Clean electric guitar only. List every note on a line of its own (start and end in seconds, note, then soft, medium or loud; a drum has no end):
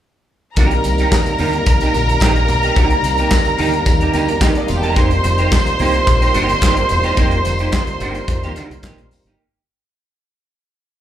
0.57 0.77 A#3 medium
0.57 0.72 D#4 medium
0.57 0.71 G4 medium
0.72 muted clean electric guitar stroke soft
0.85 muted clean electric guitar stroke soft
1.00 1.15 A#3 medium
1.00 1.15 D#4 medium
1.00 1.14 G4 medium
1.27 muted clean electric guitar stroke soft
1.39 1.60 A#3 medium
1.39 1.54 D#4 medium
1.39 1.53 G4 medium
1.54 muted clean electric guitar stroke medium
1.66 muted clean electric guitar stroke soft
1.82 1.93 A#3 medium
1.82 1.94 D#4 medium
1.82 1.94 G4 medium
1.94 muted clean electric guitar stroke soft
2.09 muted clean electric guitar stroke soft
2.21 2.42 A#3 medium
2.21 2.36 D#4 medium
2.21 2.35 G4 medium
2.36 muted clean electric guitar stroke soft
2.49 muted clean electric guitar stroke soft
2.64 2.75 A#3 medium
2.64 2.75 D#4 medium
2.64 2.76 G4 medium
2.76 2.97 A#3 medium
2.76 2.91 D#4 medium
2.76 2.90 G4 medium
2.91 muted clean electric guitar stroke soft
3.05 muted clean electric guitar stroke soft
3.19 3.34 A#3 medium
3.19 3.34 D#4 medium
3.19 3.34 G4 medium
3.46 muted clean electric guitar stroke soft
3.58 3.79 A#3 medium
3.58 3.73 D#4 medium
3.58 3.72 G4 medium
3.73 muted clean electric guitar stroke soft
3.86 muted clean electric guitar stroke soft
4.02 4.13 A#3 medium
4.02 4.13 D#4 medium
4.02 4.14 G4 medium
4.14 4.34 A#3 medium
4.14 4.29 D#4 medium
4.14 4.28 G4 medium
4.29 muted clean electric guitar stroke soft
4.41 4.61 A#3 medium
4.41 4.56 D#4 medium
4.41 4.55 G4 loud
4.56 muted clean electric guitar stroke soft
4.69 muted clean electric guitar stroke soft
4.83 4.94 A#3 medium
4.83 4.96 D#4 medium
4.83 4.96 G4 medium
4.96 5.17 A#3 medium
4.96 5.10 D#4 medium
4.96 5.09 G4 medium
5.10 muted clean electric guitar stroke soft
5.24 muted clean electric guitar stroke soft
5.38 5.54 A#3 medium
5.38 5.54 D#4 medium
5.38 5.54 G4 medium
5.66 muted clean electric guitar stroke soft
5.80 6.00 A#3 medium
5.80 5.94 D#4 medium
5.80 5.93 G4 medium
5.94 muted clean electric guitar stroke soft
6.07 muted clean electric guitar stroke soft
6.22 6.33 A#3 soft
6.22 6.33 D#4 medium
6.22 6.34 G4 medium
6.34 6.55 A#3 medium
6.34 6.49 D#4 medium
6.34 6.48 G4 medium
6.49 muted clean electric guitar stroke soft
6.62 6.83 A#3 medium
6.62 6.77 D#4 medium
6.62 6.76 G4 medium
6.77 muted clean electric guitar stroke soft
6.90 muted clean electric guitar stroke soft
7.04 7.17 A#3 medium
7.04 7.17 D#4 medium
7.04 7.18 G4 medium
7.18 7.38 A#3 medium
7.18 7.32 D#4 medium
7.18 7.31 G4 medium
7.32 muted clean electric guitar stroke soft
7.46 muted clean electric guitar stroke soft
7.60 7.76 A#3 medium
7.60 7.75 D#4 medium
7.60 7.75 G4 medium
7.89 muted clean electric guitar stroke medium
8.01 8.21 A#3 medium
8.01 8.16 D#4 medium
8.01 8.15 G4 medium
8.16 muted clean electric guitar stroke soft
8.29 muted clean electric guitar stroke soft
8.44 8.56 A#3 medium
8.44 8.56 D#4 medium
8.44 8.57 G4 medium
8.57 8.77 A#3 medium
8.57 8.72 D#4 medium
8.57 8.70 G4 medium
8.71 muted clean electric guitar stroke soft
8.85 9.05 A#3 medium
8.85 8.99 D#4 medium
8.85 8.98 G4 medium
8.99 muted clean electric guitar stroke medium
9.12 muted clean electric guitar stroke soft
9.27 9.42 A#3 medium
9.27 9.41 D#4 medium
9.27 9.41 G4 medium